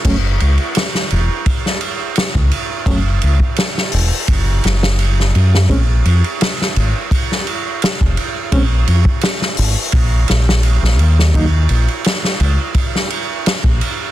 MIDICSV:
0, 0, Header, 1, 4, 480
1, 0, Start_track
1, 0, Tempo, 705882
1, 34, Time_signature, 4, 2, 24, 8
1, 9598, End_track
2, 0, Start_track
2, 0, Title_t, "Reed electric piano"
2, 0, Program_c, 0, 4
2, 30, Note_on_c, 0, 54, 73
2, 34, Note_on_c, 0, 57, 64
2, 37, Note_on_c, 0, 61, 78
2, 99, Note_off_c, 0, 54, 0
2, 101, Note_off_c, 0, 57, 0
2, 103, Note_off_c, 0, 61, 0
2, 1944, Note_on_c, 0, 54, 73
2, 1949, Note_on_c, 0, 57, 66
2, 1954, Note_on_c, 0, 61, 76
2, 2016, Note_off_c, 0, 54, 0
2, 2019, Note_off_c, 0, 57, 0
2, 2021, Note_off_c, 0, 61, 0
2, 3871, Note_on_c, 0, 56, 73
2, 3874, Note_on_c, 0, 60, 66
2, 3879, Note_on_c, 0, 61, 79
2, 3940, Note_off_c, 0, 56, 0
2, 3941, Note_off_c, 0, 60, 0
2, 3944, Note_off_c, 0, 61, 0
2, 5792, Note_on_c, 0, 56, 74
2, 5796, Note_on_c, 0, 60, 68
2, 5801, Note_on_c, 0, 61, 82
2, 5860, Note_off_c, 0, 56, 0
2, 5862, Note_off_c, 0, 60, 0
2, 5865, Note_off_c, 0, 61, 0
2, 7716, Note_on_c, 0, 54, 72
2, 7722, Note_on_c, 0, 58, 66
2, 7724, Note_on_c, 0, 63, 81
2, 7782, Note_off_c, 0, 54, 0
2, 7785, Note_off_c, 0, 58, 0
2, 7786, Note_off_c, 0, 63, 0
2, 9598, End_track
3, 0, Start_track
3, 0, Title_t, "Fingered electric bass"
3, 0, Program_c, 1, 33
3, 37, Note_on_c, 1, 30, 87
3, 248, Note_off_c, 1, 30, 0
3, 280, Note_on_c, 1, 37, 81
3, 387, Note_off_c, 1, 37, 0
3, 761, Note_on_c, 1, 28, 94
3, 867, Note_off_c, 1, 28, 0
3, 1602, Note_on_c, 1, 37, 91
3, 1701, Note_off_c, 1, 37, 0
3, 1948, Note_on_c, 1, 30, 92
3, 2163, Note_off_c, 1, 30, 0
3, 2199, Note_on_c, 1, 37, 82
3, 2306, Note_off_c, 1, 37, 0
3, 2678, Note_on_c, 1, 28, 97
3, 2786, Note_off_c, 1, 28, 0
3, 2916, Note_on_c, 1, 30, 85
3, 3127, Note_off_c, 1, 30, 0
3, 3155, Note_on_c, 1, 30, 82
3, 3613, Note_off_c, 1, 30, 0
3, 3639, Note_on_c, 1, 42, 90
3, 3849, Note_off_c, 1, 42, 0
3, 3874, Note_on_c, 1, 34, 87
3, 4086, Note_off_c, 1, 34, 0
3, 4116, Note_on_c, 1, 41, 85
3, 4225, Note_off_c, 1, 41, 0
3, 4599, Note_on_c, 1, 32, 95
3, 4706, Note_off_c, 1, 32, 0
3, 5449, Note_on_c, 1, 29, 90
3, 5545, Note_off_c, 1, 29, 0
3, 5798, Note_on_c, 1, 34, 89
3, 6008, Note_off_c, 1, 34, 0
3, 6037, Note_on_c, 1, 41, 83
3, 6145, Note_off_c, 1, 41, 0
3, 6518, Note_on_c, 1, 32, 95
3, 6626, Note_off_c, 1, 32, 0
3, 6757, Note_on_c, 1, 34, 85
3, 6968, Note_off_c, 1, 34, 0
3, 7005, Note_on_c, 1, 34, 81
3, 7358, Note_off_c, 1, 34, 0
3, 7362, Note_on_c, 1, 34, 88
3, 7477, Note_off_c, 1, 34, 0
3, 7477, Note_on_c, 1, 39, 78
3, 7688, Note_off_c, 1, 39, 0
3, 7715, Note_on_c, 1, 39, 91
3, 7927, Note_off_c, 1, 39, 0
3, 7956, Note_on_c, 1, 34, 84
3, 8065, Note_off_c, 1, 34, 0
3, 8433, Note_on_c, 1, 37, 96
3, 8543, Note_off_c, 1, 37, 0
3, 9279, Note_on_c, 1, 34, 89
3, 9380, Note_off_c, 1, 34, 0
3, 9598, End_track
4, 0, Start_track
4, 0, Title_t, "Drums"
4, 31, Note_on_c, 9, 51, 71
4, 32, Note_on_c, 9, 36, 95
4, 34, Note_on_c, 9, 49, 75
4, 99, Note_off_c, 9, 51, 0
4, 100, Note_off_c, 9, 36, 0
4, 102, Note_off_c, 9, 49, 0
4, 274, Note_on_c, 9, 51, 51
4, 342, Note_off_c, 9, 51, 0
4, 392, Note_on_c, 9, 51, 42
4, 460, Note_off_c, 9, 51, 0
4, 508, Note_on_c, 9, 51, 83
4, 523, Note_on_c, 9, 38, 109
4, 576, Note_off_c, 9, 51, 0
4, 591, Note_off_c, 9, 38, 0
4, 644, Note_on_c, 9, 38, 50
4, 712, Note_off_c, 9, 38, 0
4, 751, Note_on_c, 9, 51, 60
4, 819, Note_off_c, 9, 51, 0
4, 992, Note_on_c, 9, 51, 72
4, 993, Note_on_c, 9, 36, 102
4, 1060, Note_off_c, 9, 51, 0
4, 1061, Note_off_c, 9, 36, 0
4, 1129, Note_on_c, 9, 38, 40
4, 1197, Note_off_c, 9, 38, 0
4, 1229, Note_on_c, 9, 51, 67
4, 1297, Note_off_c, 9, 51, 0
4, 1466, Note_on_c, 9, 51, 82
4, 1481, Note_on_c, 9, 38, 102
4, 1534, Note_off_c, 9, 51, 0
4, 1549, Note_off_c, 9, 38, 0
4, 1598, Note_on_c, 9, 36, 83
4, 1666, Note_off_c, 9, 36, 0
4, 1710, Note_on_c, 9, 51, 61
4, 1778, Note_off_c, 9, 51, 0
4, 1946, Note_on_c, 9, 36, 107
4, 1948, Note_on_c, 9, 51, 79
4, 2014, Note_off_c, 9, 36, 0
4, 2016, Note_off_c, 9, 51, 0
4, 2187, Note_on_c, 9, 51, 64
4, 2255, Note_off_c, 9, 51, 0
4, 2310, Note_on_c, 9, 36, 87
4, 2378, Note_off_c, 9, 36, 0
4, 2423, Note_on_c, 9, 51, 84
4, 2438, Note_on_c, 9, 38, 109
4, 2491, Note_off_c, 9, 51, 0
4, 2506, Note_off_c, 9, 38, 0
4, 2568, Note_on_c, 9, 38, 43
4, 2636, Note_off_c, 9, 38, 0
4, 2663, Note_on_c, 9, 46, 75
4, 2731, Note_off_c, 9, 46, 0
4, 2909, Note_on_c, 9, 51, 72
4, 2912, Note_on_c, 9, 36, 96
4, 2977, Note_off_c, 9, 51, 0
4, 2980, Note_off_c, 9, 36, 0
4, 3153, Note_on_c, 9, 51, 68
4, 3165, Note_on_c, 9, 38, 53
4, 3221, Note_off_c, 9, 51, 0
4, 3233, Note_off_c, 9, 38, 0
4, 3285, Note_on_c, 9, 38, 108
4, 3353, Note_off_c, 9, 38, 0
4, 3391, Note_on_c, 9, 51, 70
4, 3459, Note_off_c, 9, 51, 0
4, 3535, Note_on_c, 9, 38, 35
4, 3603, Note_off_c, 9, 38, 0
4, 3638, Note_on_c, 9, 51, 56
4, 3706, Note_off_c, 9, 51, 0
4, 3771, Note_on_c, 9, 38, 59
4, 3839, Note_off_c, 9, 38, 0
4, 3873, Note_on_c, 9, 36, 99
4, 3880, Note_on_c, 9, 51, 75
4, 3941, Note_off_c, 9, 36, 0
4, 3948, Note_off_c, 9, 51, 0
4, 4117, Note_on_c, 9, 51, 57
4, 4185, Note_off_c, 9, 51, 0
4, 4245, Note_on_c, 9, 51, 41
4, 4313, Note_off_c, 9, 51, 0
4, 4357, Note_on_c, 9, 51, 88
4, 4365, Note_on_c, 9, 38, 116
4, 4425, Note_off_c, 9, 51, 0
4, 4433, Note_off_c, 9, 38, 0
4, 4499, Note_on_c, 9, 38, 51
4, 4567, Note_off_c, 9, 38, 0
4, 4598, Note_on_c, 9, 51, 63
4, 4666, Note_off_c, 9, 51, 0
4, 4836, Note_on_c, 9, 36, 99
4, 4839, Note_on_c, 9, 51, 73
4, 4904, Note_off_c, 9, 36, 0
4, 4907, Note_off_c, 9, 51, 0
4, 4976, Note_on_c, 9, 38, 34
4, 5044, Note_off_c, 9, 38, 0
4, 5078, Note_on_c, 9, 51, 62
4, 5146, Note_off_c, 9, 51, 0
4, 5317, Note_on_c, 9, 51, 69
4, 5330, Note_on_c, 9, 38, 107
4, 5385, Note_off_c, 9, 51, 0
4, 5398, Note_off_c, 9, 38, 0
4, 5446, Note_on_c, 9, 36, 78
4, 5514, Note_off_c, 9, 36, 0
4, 5557, Note_on_c, 9, 51, 59
4, 5625, Note_off_c, 9, 51, 0
4, 5794, Note_on_c, 9, 51, 80
4, 5795, Note_on_c, 9, 36, 95
4, 5862, Note_off_c, 9, 51, 0
4, 5863, Note_off_c, 9, 36, 0
4, 6035, Note_on_c, 9, 51, 65
4, 6103, Note_off_c, 9, 51, 0
4, 6155, Note_on_c, 9, 36, 82
4, 6223, Note_off_c, 9, 36, 0
4, 6265, Note_on_c, 9, 51, 80
4, 6280, Note_on_c, 9, 38, 102
4, 6333, Note_off_c, 9, 51, 0
4, 6348, Note_off_c, 9, 38, 0
4, 6404, Note_on_c, 9, 38, 43
4, 6472, Note_off_c, 9, 38, 0
4, 6507, Note_on_c, 9, 46, 67
4, 6575, Note_off_c, 9, 46, 0
4, 6746, Note_on_c, 9, 51, 73
4, 6753, Note_on_c, 9, 36, 101
4, 6814, Note_off_c, 9, 51, 0
4, 6821, Note_off_c, 9, 36, 0
4, 6989, Note_on_c, 9, 51, 63
4, 7001, Note_on_c, 9, 38, 58
4, 7057, Note_off_c, 9, 51, 0
4, 7069, Note_off_c, 9, 38, 0
4, 7133, Note_on_c, 9, 38, 108
4, 7201, Note_off_c, 9, 38, 0
4, 7229, Note_on_c, 9, 51, 74
4, 7297, Note_off_c, 9, 51, 0
4, 7372, Note_on_c, 9, 38, 33
4, 7440, Note_off_c, 9, 38, 0
4, 7474, Note_on_c, 9, 51, 57
4, 7542, Note_off_c, 9, 51, 0
4, 7611, Note_on_c, 9, 38, 52
4, 7679, Note_off_c, 9, 38, 0
4, 7714, Note_on_c, 9, 36, 103
4, 7718, Note_on_c, 9, 51, 84
4, 7782, Note_off_c, 9, 36, 0
4, 7786, Note_off_c, 9, 51, 0
4, 7949, Note_on_c, 9, 51, 62
4, 8017, Note_off_c, 9, 51, 0
4, 8080, Note_on_c, 9, 51, 38
4, 8148, Note_off_c, 9, 51, 0
4, 8190, Note_on_c, 9, 51, 84
4, 8203, Note_on_c, 9, 38, 109
4, 8258, Note_off_c, 9, 51, 0
4, 8271, Note_off_c, 9, 38, 0
4, 8326, Note_on_c, 9, 38, 51
4, 8394, Note_off_c, 9, 38, 0
4, 8431, Note_on_c, 9, 51, 57
4, 8499, Note_off_c, 9, 51, 0
4, 8666, Note_on_c, 9, 51, 72
4, 8667, Note_on_c, 9, 36, 97
4, 8734, Note_off_c, 9, 51, 0
4, 8735, Note_off_c, 9, 36, 0
4, 8809, Note_on_c, 9, 38, 40
4, 8877, Note_off_c, 9, 38, 0
4, 8911, Note_on_c, 9, 51, 62
4, 8979, Note_off_c, 9, 51, 0
4, 9153, Note_on_c, 9, 51, 77
4, 9159, Note_on_c, 9, 38, 109
4, 9221, Note_off_c, 9, 51, 0
4, 9227, Note_off_c, 9, 38, 0
4, 9275, Note_on_c, 9, 36, 90
4, 9343, Note_off_c, 9, 36, 0
4, 9391, Note_on_c, 9, 51, 66
4, 9459, Note_off_c, 9, 51, 0
4, 9598, End_track
0, 0, End_of_file